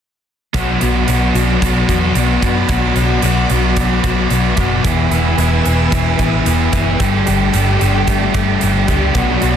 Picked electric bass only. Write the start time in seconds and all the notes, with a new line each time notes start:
0.54 B1
0.82 B1
1.08 B1
1.35 B1
1.62 B1
1.89 E2
2.15 B1
2.42 F#2
2.69 B1
2.96 B1
3.23 B1
3.51 B1
4.04 B1
4.30 B1
4.58 F#1
4.85 E1
5.11 E1
5.38 E1
5.66 E1
5.92 E1
6.19 A1
6.47 E1
6.73 F#1
7.00 G1
7.28 G1
7.54 G1
7.82 G1
8.08 G1
8.35 G1
8.63 G1
8.88 C#2
9.15 B1
9.43 B1